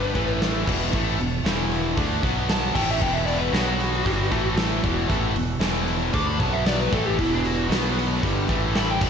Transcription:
Already playing: fingered electric bass G1, overdriven electric guitar G2 D3 G3, lead electric guitar B4
0.15 fingered electric bass A1, overdriven electric guitar A2 E3 A3, kick, open hi-hat
0.42 snare, open hi-hat
0.67 fingered electric bass E1, overdriven electric guitar E2 B2 E3, kick, crash
0.92 fingered electric bass A1, overdriven electric guitar A2 E3 A3, kick
1.18 fingered electric bass E1, overdriven electric guitar E2 B2, open hi-hat
1.43 fingered electric bass E1, overdriven electric guitar E2 B2 E3, snare, open hi-hat
1.71 open hi-hat
1.97 fingered electric bass D2, overdriven electric guitar D3 A3 D4, kick, open hi-hat
2.23 fingered electric bass B1, overdriven electric guitar B2 F#3 B3, kick, open hi-hat
2.49 lead electric guitar A5, snare, open hi-hat
2.74 fingered electric bass A1, overdriven electric guitar A2 E3 A3, lead electric guitar G5, kick, crash
2.90 lead electric guitar E5
2.99 fingered electric bass E1, overdriven electric guitar E2 B2 E3, tonewheel organ B3 F#4, lead electric guitar G5, kick
3.04 tonewheel organ E3
3.13 lead electric guitar E5
3.26 lead electric guitar D5, open hi-hat
3.39 lead electric guitar B4
3.52 fingered electric bass B1, overdriven electric guitar B2 F#3 B3, lead electric guitar F#4, snare, open hi-hat
3.57 tonewheel organ B4
3.80 open hi-hat
4.04 fingered electric bass G1, overdriven electric guitar G2 D3 G3, tonewheel organ E3, kick, open hi-hat
4.31 fingered electric bass A1, overdriven electric guitar A2 E3 A3, tonewheel organ A3 E4 B4, kick, open hi-hat
4.57 snare, open hi-hat
4.82 fingered electric bass E1, overdriven electric guitar E2 B2 E3, tonewheel organ E3 B3 F#4, kick, open hi-hat
5.07 fingered electric bass A1, overdriven electric guitar A2 E3 A3, kick, open hi-hat
5.34 fingered electric bass E1, overdriven electric guitar E2 B2, open hi-hat
5.59 fingered electric bass E1, overdriven electric guitar E2 B2 E3, snare, open hi-hat
5.88 open hi-hat
6.13 fingered electric bass D2, overdriven electric guitar D3 A3 D4, lead electric guitar D6, kick, open hi-hat
6.27 lead electric guitar B5
6.38 fingered electric bass B1, overdriven electric guitar B2 F#3 B3, tonewheel organ B4, lead electric guitar A5, kick, open hi-hat
6.53 lead electric guitar E5
6.66 lead electric guitar D5, snare, open hi-hat
6.80 lead electric guitar B4
6.92 fingered electric bass A1, overdriven electric guitar A2 E3 A3, tonewheel organ E3, lead electric guitar A4, kick, open hi-hat
7.06 lead electric guitar G4
7.18 fingered electric bass E1, overdriven electric guitar E2 B2 E3, lead electric guitar E4, kick, open hi-hat
7.33 lead electric guitar D4
7.45 lead electric guitar F#4, open hi-hat
7.70 fingered electric bass B1, overdriven electric guitar B2 F#3 B3, tonewheel organ F#4 B4, snare, open hi-hat
7.99 open hi-hat
8.22 fingered electric bass G1, overdriven electric guitar G2 D3 G3, tonewheel organ E3, kick, open hi-hat
8.48 fingered electric bass A1, overdriven electric guitar A2 E3 A3, tonewheel organ A3 E4 B4, kick, open hi-hat
8.75 lead electric guitar B5, snare, open hi-hat
8.90 lead electric guitar G5
9.00 fingered electric bass E1, overdriven electric guitar E2 B2 E3, tonewheel organ E3 B3 F#4, lead electric guitar B5, kick, crash

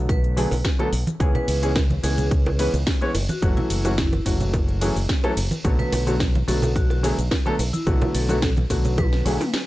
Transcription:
Already playing: fingered electric bass B1, grand piano D3 F#3 A3 B3 F#4
0.09 vibraphone B4, kick, closed hi-hat, high bongo, shaker
0.24 closed hi-hat
0.37 grand piano D3 F#3 A3 B3 G#4, open hi-hat, shaker
0.51 fingered electric bass B1, open hi-hat, high bongo, shaker
0.65 kick, snare, shaker
0.79 grand piano D3 F#3 A3 B3 A4, closed hi-hat, high bongo
0.93 fingered electric bass B1, open hi-hat, shaker
1.07 closed hi-hat, high conga, shaker
1.20 fingered electric bass C#2, grand piano E3 G#3 B3 C#4 G#4, kick, closed hi-hat, shaker
1.35 vibraphone B4, closed hi-hat, high bongo, low conga
1.48 fingered electric bass C#2, open hi-hat, ride, shaker
1.62 grand piano E3 G#3 B3 C#4 G#4, closed hi-hat, shaker
1.76 kick, snare, closed hi-hat, high bongo, shaker
1.90 closed hi-hat, high conga, low conga
2.03 fingered electric bass C#2, grand piano E3 G#3 B3 C#4 G#4, vibraphone G#4, open hi-hat, ride, high bongo, shaker
2.18 closed hi-hat, low conga, shaker
2.31 kick, closed hi-hat, shaker
2.46 closed hi-hat, high bongo
2.59 grand piano E3 G#3 B3 C#4 B4, open hi-hat, ride, shaker
2.74 fingered electric bass C#2, closed hi-hat, high bongo, shaker
2.87 kick, snare, open hi-hat, shaker
3.01 grand piano E3 G#3 B3 C#4 C#5, closed hi-hat
3.15 fingered electric bass F#1, open hi-hat, ride, high bongo, shaker
3.29 vibraphone F#4, closed hi-hat, high conga, shaker
3.42 fingered electric bass F#1, grand piano E3 F#3 A3 C#4 F#4, kick, closed hi-hat, high bongo, shaker
3.57 vibraphone E4, closed hi-hat, low conga
3.70 fingered electric bass F#1, open hi-hat, ride, shaker
3.85 grand piano E3 F#3 A3 C#4 F#4, closed hi-hat, high bongo, shaker
3.98 kick, snare, closed hi-hat, shaker
4.12 closed hi-hat, high bongo, high conga
4.25 fingered electric bass F#1, grand piano E3 F#3 A3 C#4 F#4, kick, open hi-hat, ride, shaker
4.40 closed hi-hat, low conga, shaker
4.54 kick, closed hi-hat, high bongo, shaker
4.68 closed hi-hat
4.81 grand piano E3 F#3 A3 C#4 G#4, open hi-hat, ride, high bongo, shaker
4.96 fingered electric bass F#1, open hi-hat, shaker
5.09 kick, snare, closed hi-hat, shaker
5.24 grand piano E3 F#3 A3 C#4 A4, closed hi-hat, high bongo
5.37 fingered electric bass F#1, open hi-hat, ride, shaker
5.51 closed hi-hat, high bongo, high conga, shaker
5.64 fingered electric bass B1, grand piano D3 F#3 A3 B3 F#4, kick, closed hi-hat, shaker
5.79 vibraphone B4, closed hi-hat, low conga
5.92 fingered electric bass B1, open hi-hat, ride, high bongo, shaker
6.07 grand piano D3 F#3 A3 B3 F#4, closed hi-hat, shaker
6.19 kick, snare, closed hi-hat, high bongo, shaker
6.35 closed hi-hat, high conga, low conga
6.48 fingered electric bass B1, grand piano D3 F#3 A3 B3 F#4, vibraphone A4, open hi-hat, ride, shaker
6.62 closed hi-hat, high bongo, low conga, shaker
6.76 vibraphone F#4, kick, closed hi-hat, shaker
6.90 vibraphone F#4, closed hi-hat, high bongo
7.03 grand piano D3 F#3 A3 B3 G#4, open hi-hat, ride, shaker
7.18 fingered electric bass B1, closed hi-hat, shaker
7.31 kick, snare, open hi-hat, high bongo, shaker
7.46 grand piano D3 F#3 A3 B3 A4, closed hi-hat
7.59 fingered electric bass B1, open hi-hat, ride, high bongo, shaker
7.73 vibraphone E4, closed hi-hat, high conga, shaker
7.87 fingered electric bass B1, grand piano D3 F#3 A3 B3 F#4, kick, closed hi-hat, shaker
8.02 closed hi-hat, high bongo, low conga
8.14 fingered electric bass B1, vibraphone A4, open hi-hat, ride, shaker
8.29 grand piano D3 F#3 A3 B3 F#4, vibraphone A4, closed hi-hat, high bongo, shaker
8.42 kick, snare, closed hi-hat, shaker
8.57 closed hi-hat, high conga, low conga
8.70 fingered electric bass B1, grand piano D3 F#3 A3 B3 F#4, kick, open hi-hat, ride, high bongo, shaker
8.85 closed hi-hat, low conga, shaker
8.98 vibraphone B4, kick, closed hi-hat, high tom, high bongo, high conga, shaker
9.13 snare, closed hi-hat
9.25 fingered electric bass B1, grand piano D3 F#3 A3 B3 G#4, open hi-hat, ride, shaker
9.41 open hi-hat, mid tom, high bongo, shaker
9.54 snare, closed hi-hat, shaker

